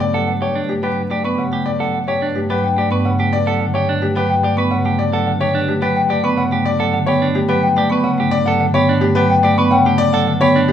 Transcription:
0.00 10.72 G2 medium
0.00 0.18 D5 medium
0.14 0.32 F#3 medium
0.14 0.32 A4 medium
0.14 0.32 F#5 medium
0.28 0.46 F#5 medium
0.42 0.60 G4 medium
0.42 0.60 C#5 medium
0.55 0.73 D4 medium
0.69 0.87 A3 medium
0.69 0.87 G4 medium
0.83 1.01 F#3 medium
0.83 1.01 G4 medium
0.83 1.01 B4 medium
1.10 1.29 A3 medium
1.10 1.25 G4 medium
1.10 1.29 D5 medium
1.24 1.43 B3 medium
1.24 1.43 B4 medium
1.24 1.43 C#6 medium
1.38 1.56 C#3 medium
1.38 1.57 F#5 medium
1.52 1.70 A3 medium
1.52 1.71 G4 medium
1.66 1.84 D5 medium
1.79 1.98 F#3 medium
1.79 1.98 A4 medium
1.79 1.98 F#5 medium
1.94 2.12 F#5 medium
2.08 2.26 G4 medium
2.08 2.26 C#5 medium
2.22 2.40 D4 medium
2.35 2.54 A3 medium
2.35 2.54 G4 medium
2.50 2.68 F#3 medium
2.50 2.68 G4 medium
2.50 2.68 B4 medium
2.64 2.82 G5 medium
2.77 2.95 A3 medium
2.77 2.91 G4 medium
2.77 2.96 D5 medium
2.91 3.09 B3 medium
2.91 3.10 B4 medium
2.91 3.10 C#6 medium
3.05 3.23 C#3 medium
3.05 3.23 F#5 medium
3.19 3.37 A3 medium
3.19 3.37 G4 medium
3.33 3.51 D5 medium
3.46 3.65 F#3 medium
3.46 3.65 A4 medium
3.46 3.65 F#5 medium
3.60 3.78 D3 medium
3.60 3.79 F#5 medium
3.74 3.93 G4 medium
3.74 3.92 C#5 medium
3.89 4.07 D4 medium
4.02 4.20 A3 medium
4.02 4.20 G4 medium
4.15 4.34 F#3 medium
4.15 4.35 G4 medium
4.15 4.34 B4 medium
4.30 4.48 G5 medium
4.43 4.62 A3 medium
4.43 4.58 G4 medium
4.43 4.62 D5 medium
4.57 4.76 B3 medium
4.57 4.76 B4 medium
4.57 4.76 C#6 medium
4.71 4.90 C#3 medium
4.71 4.90 F#5 medium
4.85 5.04 A3 medium
4.85 5.04 G4 medium
4.99 5.17 D5 medium
5.13 5.31 F#3 medium
5.13 5.32 A4 medium
5.13 5.31 F#5 medium
5.27 5.45 D3 medium
5.27 5.45 F#5 medium
5.41 5.59 G4 medium
5.41 5.59 C#5 medium
5.55 5.73 D4 medium
5.68 5.87 A3 medium
5.68 5.87 G4 medium
5.82 6.01 F#3 medium
5.82 6.01 G4 medium
5.82 6.01 B4 medium
5.97 6.15 G5 medium
6.10 6.29 A3 medium
6.10 6.24 G4 medium
6.10 6.29 D5 medium
6.24 6.42 B3 loud
6.24 6.43 B4 medium
6.24 6.42 C#6 medium
6.37 6.56 C#3 medium
6.37 6.56 F#5 medium
6.52 6.70 A3 medium
6.52 6.70 G4 medium
6.65 6.84 D5 medium
6.79 6.98 F#3 medium
6.79 6.98 A4 medium
6.79 6.98 F#5 medium
6.93 7.12 D3 medium
6.93 7.12 F#5 medium
7.06 7.26 B3 medium
7.06 7.26 G4 medium
7.06 7.26 C#5 medium
7.22 7.40 D4 medium
7.35 7.54 A3 medium
7.35 7.54 G4 medium
7.49 7.67 F#3 loud
7.49 7.68 G4 medium
7.49 7.67 B4 medium
7.63 7.81 G5 medium
7.76 7.95 A3 medium
7.76 7.92 G4 medium
7.76 7.95 D5 medium
7.90 8.09 B3 medium
7.90 8.10 B4 medium
7.90 8.09 C#6 medium
8.04 8.23 C#3 medium
8.04 8.23 F#5 medium
8.18 8.37 A3 medium
8.18 8.37 G4 medium
8.31 8.50 D5 loud
8.46 8.65 F#3 medium
8.46 8.65 A4 loud
8.46 8.65 F#5 medium
8.60 8.79 D3 medium
8.60 8.79 F#5 medium
8.74 8.93 B3 medium
8.74 8.93 G4 medium
8.74 8.93 C#5 medium
8.89 9.07 D4 loud
9.01 9.20 A3 medium
9.01 9.20 G4 medium
9.15 9.34 F#3 loud
9.15 9.35 G4 medium
9.15 9.34 B4 loud
9.30 9.48 G5 loud
9.43 9.62 A3 medium
9.43 9.58 G4 medium
9.43 9.62 D5 medium
9.58 9.76 B3 loud
9.58 9.76 B4 medium
9.58 9.76 C#6 medium
9.71 9.90 C#3 medium
9.71 9.90 F#5 medium
9.71 9.90 G5 loud
9.86 10.04 A3 medium
9.86 10.04 G4 medium
9.98 10.17 D5 loud
10.13 10.32 F#3 medium
10.13 10.32 A4 loud
10.13 10.31 F#5 medium
10.27 10.45 D3 medium
10.27 10.46 F#5 medium
10.41 10.59 B3 loud
10.41 10.60 G4 medium
10.41 10.59 C#5 loud
10.56 10.72 D4 loud
10.68 10.72 A3 medium
10.68 10.72 G4 medium

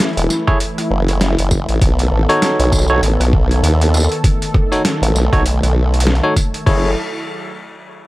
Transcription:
0.00 1.77 E3 medium
0.00 1.78 A3 medium
0.00 1.79 E4 medium
0.00 snare loud
0.00 closed hi-hat medium
0.04 closed hi-hat soft
0.09 closed hi-hat soft
0.13 closed hi-hat soft
0.17 0.28 E1 loud
0.17 closed hi-hat medium
0.30 snare soft
0.30 tambourine medium
0.48 0.58 E4 loud
0.48 0.57 G#4 medium
0.48 0.58 A4 medium
0.48 0.57 C#5 loud
0.48 kick loud
0.48 cross-stick soft
0.60 closed hi-hat medium
0.78 cross-stick soft
0.78 closed hi-hat medium
0.91 1.36 F#1 loud
1.08 closed hi-hat soft
1.21 snare loud
1.21 closed hi-hat medium
1.39 1.66 F#1 loud
1.39 closed hi-hat medium
1.51 kick medium
1.51 tambourine medium
1.69 1.79 A1 loud
1.69 closed hi-hat soft
1.81 2.10 B1 medium
1.81 6.62 D#3 medium
1.81 4.22 B3 medium
1.81 6.62 A4 medium
1.81 kick loud
1.81 closed hi-hat medium
1.99 closed hi-hat medium
2.12 2.27 A1 loud
2.29 2.86 D#4 medium
2.29 2.86 F#4 medium
2.29 2.86 A4 medium
2.29 2.86 C#5 loud
2.29 closed hi-hat soft
2.42 snare loud
2.42 closed hi-hat medium
2.60 3.01 B1 loud
2.60 closed hi-hat medium
2.72 kick medium
2.72 tambourine medium
2.75 tambourine medium
2.79 tambourine soft
2.81 tambourine soft
2.88 3.00 D#4 medium
2.88 3.00 F#4 medium
2.88 3.00 A4 medium
2.88 3.00 C#5 loud
2.88 tambourine soft
3.02 3.17 A1 loud
3.02 closed hi-hat medium
3.20 3.61 B1 loud
3.20 cross-stick soft
3.20 closed hi-hat medium
3.33 kick loud
3.51 closed hi-hat soft
3.63 4.08 D#2 loud
3.63 closed hi-hat medium
3.81 closed hi-hat medium
3.94 cross-stick soft
3.94 tambourine medium
3.97 tambourine medium
4.00 tambourine soft
4.03 tambourine soft
4.12 closed hi-hat soft
4.24 6.64 A3 medium
4.24 kick loud
4.24 closed hi-hat medium
4.42 closed hi-hat medium
4.54 kick loud
4.54 cross-stick medium
4.72 4.82 D#4 medium
4.72 4.82 F#4 medium
4.72 4.82 A4 medium
4.72 4.82 C#5 medium
4.72 closed hi-hat soft
4.85 snare loud
4.85 closed hi-hat medium
5.02 5.13 A1 loud
5.02 closed hi-hat medium
5.14 5.30 B1 medium
5.14 snare soft
5.14 tambourine medium
5.33 5.60 B1 loud
5.33 5.43 D#4 loud
5.33 5.42 F#4 medium
5.33 5.42 A4 medium
5.33 5.43 C#5 loud
5.33 kick loud
5.33 cross-stick soft
5.33 closed hi-hat soft
5.46 closed hi-hat medium
5.63 6.21 B1 loud
5.63 cross-stick soft
5.63 closed hi-hat medium
5.94 closed hi-hat soft
6.00 closed hi-hat medium
6.07 snare loud
6.15 closed hi-hat soft
6.23 6.33 D#4 medium
6.23 6.33 F#4 medium
6.23 6.33 A4 medium
6.23 6.33 C#5 medium
6.36 kick medium
6.36 closed hi-hat medium
6.36 tambourine medium
6.54 closed hi-hat soft
6.66 6.95 F#1 medium
6.66 6.95 F#3 medium
6.66 6.90 E4 medium
6.66 6.95 E4 medium
6.66 6.90 G#4 medium
6.66 6.90 A4 medium
6.66 6.95 A4 medium
6.66 6.90 C#5 loud
6.66 kick loud
6.66 crash medium

